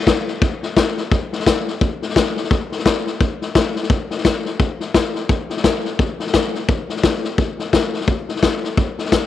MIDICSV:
0, 0, Header, 1, 2, 480
1, 0, Start_track
1, 0, Tempo, 348230
1, 1534, Time_signature, 4, 2, 24, 8
1, 12772, End_track
2, 0, Start_track
2, 0, Title_t, "Drums"
2, 94, Note_on_c, 9, 36, 89
2, 97, Note_on_c, 9, 38, 109
2, 97, Note_on_c, 9, 44, 83
2, 232, Note_off_c, 9, 36, 0
2, 235, Note_off_c, 9, 38, 0
2, 235, Note_off_c, 9, 44, 0
2, 382, Note_on_c, 9, 38, 34
2, 520, Note_off_c, 9, 38, 0
2, 575, Note_on_c, 9, 36, 114
2, 578, Note_on_c, 9, 38, 33
2, 713, Note_off_c, 9, 36, 0
2, 716, Note_off_c, 9, 38, 0
2, 863, Note_on_c, 9, 38, 36
2, 1001, Note_off_c, 9, 38, 0
2, 1055, Note_on_c, 9, 36, 80
2, 1056, Note_on_c, 9, 38, 109
2, 1056, Note_on_c, 9, 44, 87
2, 1193, Note_off_c, 9, 36, 0
2, 1194, Note_off_c, 9, 38, 0
2, 1194, Note_off_c, 9, 44, 0
2, 1344, Note_on_c, 9, 38, 39
2, 1482, Note_off_c, 9, 38, 0
2, 1537, Note_on_c, 9, 36, 113
2, 1538, Note_on_c, 9, 38, 34
2, 1675, Note_off_c, 9, 36, 0
2, 1676, Note_off_c, 9, 38, 0
2, 1828, Note_on_c, 9, 38, 33
2, 1924, Note_off_c, 9, 38, 0
2, 1924, Note_on_c, 9, 38, 35
2, 2018, Note_on_c, 9, 36, 85
2, 2021, Note_off_c, 9, 38, 0
2, 2021, Note_on_c, 9, 38, 115
2, 2021, Note_on_c, 9, 44, 87
2, 2156, Note_off_c, 9, 36, 0
2, 2159, Note_off_c, 9, 38, 0
2, 2159, Note_off_c, 9, 44, 0
2, 2310, Note_on_c, 9, 38, 36
2, 2448, Note_off_c, 9, 38, 0
2, 2497, Note_on_c, 9, 38, 33
2, 2498, Note_on_c, 9, 36, 109
2, 2635, Note_off_c, 9, 38, 0
2, 2636, Note_off_c, 9, 36, 0
2, 2786, Note_on_c, 9, 38, 37
2, 2882, Note_off_c, 9, 38, 0
2, 2882, Note_on_c, 9, 38, 32
2, 2977, Note_on_c, 9, 36, 84
2, 2980, Note_off_c, 9, 38, 0
2, 2980, Note_on_c, 9, 38, 108
2, 2980, Note_on_c, 9, 44, 82
2, 3115, Note_off_c, 9, 36, 0
2, 3118, Note_off_c, 9, 38, 0
2, 3118, Note_off_c, 9, 44, 0
2, 3263, Note_on_c, 9, 38, 38
2, 3364, Note_off_c, 9, 38, 0
2, 3364, Note_on_c, 9, 38, 33
2, 3458, Note_on_c, 9, 36, 111
2, 3460, Note_off_c, 9, 38, 0
2, 3460, Note_on_c, 9, 38, 37
2, 3596, Note_off_c, 9, 36, 0
2, 3597, Note_off_c, 9, 38, 0
2, 3747, Note_on_c, 9, 38, 35
2, 3843, Note_off_c, 9, 38, 0
2, 3843, Note_on_c, 9, 38, 35
2, 3938, Note_off_c, 9, 38, 0
2, 3938, Note_on_c, 9, 36, 84
2, 3938, Note_on_c, 9, 38, 109
2, 3938, Note_on_c, 9, 44, 82
2, 4075, Note_off_c, 9, 36, 0
2, 4076, Note_off_c, 9, 38, 0
2, 4076, Note_off_c, 9, 44, 0
2, 4227, Note_on_c, 9, 38, 35
2, 4365, Note_off_c, 9, 38, 0
2, 4418, Note_on_c, 9, 36, 108
2, 4418, Note_on_c, 9, 38, 36
2, 4556, Note_off_c, 9, 36, 0
2, 4556, Note_off_c, 9, 38, 0
2, 4708, Note_on_c, 9, 38, 37
2, 4846, Note_off_c, 9, 38, 0
2, 4896, Note_on_c, 9, 36, 88
2, 4898, Note_on_c, 9, 38, 108
2, 4898, Note_on_c, 9, 44, 87
2, 5034, Note_off_c, 9, 36, 0
2, 5036, Note_off_c, 9, 38, 0
2, 5036, Note_off_c, 9, 44, 0
2, 5181, Note_on_c, 9, 38, 36
2, 5278, Note_off_c, 9, 38, 0
2, 5278, Note_on_c, 9, 38, 34
2, 5371, Note_off_c, 9, 38, 0
2, 5371, Note_on_c, 9, 38, 35
2, 5374, Note_on_c, 9, 36, 113
2, 5509, Note_off_c, 9, 38, 0
2, 5512, Note_off_c, 9, 36, 0
2, 5659, Note_on_c, 9, 38, 37
2, 5760, Note_off_c, 9, 38, 0
2, 5760, Note_on_c, 9, 38, 36
2, 5856, Note_off_c, 9, 38, 0
2, 5856, Note_on_c, 9, 36, 91
2, 5856, Note_on_c, 9, 38, 117
2, 5856, Note_on_c, 9, 44, 86
2, 5994, Note_off_c, 9, 36, 0
2, 5994, Note_off_c, 9, 38, 0
2, 5994, Note_off_c, 9, 44, 0
2, 6140, Note_on_c, 9, 38, 35
2, 6278, Note_off_c, 9, 38, 0
2, 6334, Note_on_c, 9, 38, 36
2, 6336, Note_on_c, 9, 36, 108
2, 6472, Note_off_c, 9, 38, 0
2, 6474, Note_off_c, 9, 36, 0
2, 6620, Note_on_c, 9, 38, 34
2, 6758, Note_off_c, 9, 38, 0
2, 6815, Note_on_c, 9, 38, 114
2, 6815, Note_on_c, 9, 44, 84
2, 6816, Note_on_c, 9, 36, 84
2, 6953, Note_off_c, 9, 38, 0
2, 6953, Note_off_c, 9, 44, 0
2, 6954, Note_off_c, 9, 36, 0
2, 7102, Note_on_c, 9, 38, 40
2, 7239, Note_off_c, 9, 38, 0
2, 7292, Note_on_c, 9, 38, 36
2, 7296, Note_on_c, 9, 36, 111
2, 7429, Note_off_c, 9, 38, 0
2, 7434, Note_off_c, 9, 36, 0
2, 7577, Note_on_c, 9, 38, 34
2, 7676, Note_off_c, 9, 38, 0
2, 7676, Note_on_c, 9, 38, 35
2, 7775, Note_off_c, 9, 38, 0
2, 7775, Note_on_c, 9, 38, 112
2, 7775, Note_on_c, 9, 44, 89
2, 7777, Note_on_c, 9, 36, 88
2, 7913, Note_off_c, 9, 38, 0
2, 7913, Note_off_c, 9, 44, 0
2, 7915, Note_off_c, 9, 36, 0
2, 8064, Note_on_c, 9, 38, 35
2, 8202, Note_off_c, 9, 38, 0
2, 8254, Note_on_c, 9, 38, 35
2, 8258, Note_on_c, 9, 36, 112
2, 8392, Note_off_c, 9, 38, 0
2, 8396, Note_off_c, 9, 36, 0
2, 8542, Note_on_c, 9, 38, 34
2, 8639, Note_off_c, 9, 38, 0
2, 8639, Note_on_c, 9, 38, 34
2, 8732, Note_off_c, 9, 38, 0
2, 8732, Note_on_c, 9, 38, 110
2, 8732, Note_on_c, 9, 44, 84
2, 8736, Note_on_c, 9, 36, 85
2, 8870, Note_off_c, 9, 38, 0
2, 8870, Note_off_c, 9, 44, 0
2, 8874, Note_off_c, 9, 36, 0
2, 9024, Note_on_c, 9, 38, 39
2, 9162, Note_off_c, 9, 38, 0
2, 9213, Note_on_c, 9, 38, 36
2, 9217, Note_on_c, 9, 36, 118
2, 9351, Note_off_c, 9, 38, 0
2, 9355, Note_off_c, 9, 36, 0
2, 9502, Note_on_c, 9, 38, 34
2, 9599, Note_off_c, 9, 38, 0
2, 9599, Note_on_c, 9, 38, 34
2, 9697, Note_on_c, 9, 36, 86
2, 9698, Note_off_c, 9, 38, 0
2, 9698, Note_on_c, 9, 38, 111
2, 9698, Note_on_c, 9, 44, 86
2, 9835, Note_off_c, 9, 36, 0
2, 9836, Note_off_c, 9, 38, 0
2, 9836, Note_off_c, 9, 44, 0
2, 9979, Note_on_c, 9, 38, 35
2, 10117, Note_off_c, 9, 38, 0
2, 10175, Note_on_c, 9, 36, 113
2, 10176, Note_on_c, 9, 38, 34
2, 10313, Note_off_c, 9, 36, 0
2, 10314, Note_off_c, 9, 38, 0
2, 10465, Note_on_c, 9, 38, 37
2, 10603, Note_off_c, 9, 38, 0
2, 10656, Note_on_c, 9, 36, 80
2, 10658, Note_on_c, 9, 38, 111
2, 10658, Note_on_c, 9, 44, 83
2, 10794, Note_off_c, 9, 36, 0
2, 10796, Note_off_c, 9, 38, 0
2, 10796, Note_off_c, 9, 44, 0
2, 10945, Note_on_c, 9, 38, 37
2, 11040, Note_off_c, 9, 38, 0
2, 11040, Note_on_c, 9, 38, 36
2, 11134, Note_off_c, 9, 38, 0
2, 11134, Note_on_c, 9, 36, 109
2, 11134, Note_on_c, 9, 38, 36
2, 11272, Note_off_c, 9, 36, 0
2, 11272, Note_off_c, 9, 38, 0
2, 11422, Note_on_c, 9, 38, 34
2, 11522, Note_off_c, 9, 38, 0
2, 11522, Note_on_c, 9, 38, 36
2, 11616, Note_off_c, 9, 38, 0
2, 11616, Note_on_c, 9, 36, 84
2, 11616, Note_on_c, 9, 38, 114
2, 11616, Note_on_c, 9, 44, 82
2, 11754, Note_off_c, 9, 36, 0
2, 11754, Note_off_c, 9, 38, 0
2, 11754, Note_off_c, 9, 44, 0
2, 11909, Note_on_c, 9, 38, 38
2, 12047, Note_off_c, 9, 38, 0
2, 12095, Note_on_c, 9, 36, 113
2, 12095, Note_on_c, 9, 38, 34
2, 12233, Note_off_c, 9, 36, 0
2, 12233, Note_off_c, 9, 38, 0
2, 12383, Note_on_c, 9, 38, 35
2, 12479, Note_off_c, 9, 38, 0
2, 12479, Note_on_c, 9, 38, 31
2, 12571, Note_off_c, 9, 38, 0
2, 12571, Note_on_c, 9, 38, 110
2, 12571, Note_on_c, 9, 44, 84
2, 12573, Note_on_c, 9, 36, 91
2, 12708, Note_off_c, 9, 38, 0
2, 12708, Note_off_c, 9, 44, 0
2, 12711, Note_off_c, 9, 36, 0
2, 12772, End_track
0, 0, End_of_file